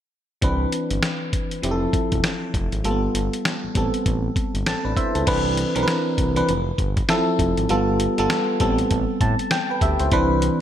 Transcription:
0.41 C2 E3 C4 D4 B4, kick, closed hi-hat
0.72 closed hi-hat
0.91 G1, closed hi-hat
1.03 snare, closed hi-hat
1.33 kick, closed hi-hat
1.51 closed hi-hat
1.62 F1 F3 C4 E4 G4, closed hi-hat
1.71 A4
1.93 kick, closed hi-hat
2.12 E1, kick, closed hi-hat
2.24 snare, closed hi-hat
2.54 F1, kick, closed hi-hat
2.72 G#1, closed hi-hat
2.84 G1 G3 A#3 F4 A4, closed hi-hat
2.91 B3
3.15 G1, closed hi-hat
3.33 closed hi-hat
3.45 snare, closed hi-hat
3.63 A1
3.75 A1 G3 B3 C4 A4, kick, closed hi-hat
3.94 closed hi-hat
4.06 A1, kick, closed hi-hat
4.36 kick, closed hi-hat
4.54 G1, closed hi-hat
4.66 A1 C4 A4 A5, snare, closed hi-hat
4.85 A1 D4 B4
4.97 E4 C5 E5, kick, closed hi-hat
5.15 C#2 C4 A4, closed hi-hat
5.27 C2 E3 C4 D4 B4, kick, closed hi-hat, crash
5.57 closed hi-hat
5.75 B1 E3 C4 D4 A#4, closed hi-hat
5.83 B4
5.88 snare, closed hi-hat
6.18 C2, kick, closed hi-hat
6.36 E3 C4 D4 B4, closed hi-hat
6.49 F1, closed hi-hat
6.78 G1, kick, closed hi-hat
6.97 kick, closed hi-hat
7.08 F3 C4 E4 A4, snare, closed hi-hat
7.39 F1, kick, closed hi-hat
7.57 G#1, closed hi-hat
7.69 G1 G3 B3 F4 A4, closed hi-hat
8.00 closed hi-hat
8.18 G1 G3 B3 F4 A4, closed hi-hat
8.30 snare, closed hi-hat
8.60 A1 G3 B3 C4 A4, kick, closed hi-hat
8.78 closed hi-hat
8.91 A1, kick, closed hi-hat
9.21 A2 A5, kick, closed hi-hat
9.39 closed hi-hat
9.51 G5, snare, closed hi-hat
9.70 B4 G5
9.81 D2 G4 E5, kick, closed hi-hat
9.99 C#2 E4 C5, closed hi-hat
10.11 C2 E3 C4 D4 B4, kick, closed hi-hat
10.42 closed hi-hat

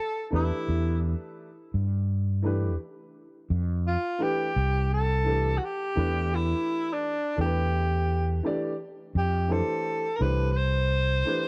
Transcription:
Already playing: A4
0.30 E2 E3 A3 D4 G4 B4
0.35 E4
0.69 E2
1.74 G2
2.42 E3 A3 D4 G4 B4
3.50 F2
3.87 F4
4.18 E3 A3 D4 G4 B4
4.56 C2
4.94 A4
5.24 E3 A3 D4 G4 A4
5.57 F#4
5.64 G4
5.95 E2 E3 A3 D4 G4 B4
6.35 E4
6.93 D4
7.36 E2 E3 A3 D4 G4 A4
7.40 G4
7.46 B4
8.43 E3 A3 D4 G4 D5
9.15 F2 G4
9.48 E3 A3 D4 G4 A4 C5
10.16 E3 A#4
10.20 C2 A3 D4 G4 B4 C5
10.51 B4
10.56 C5
11.25 E3 A3 D4 G4 B4

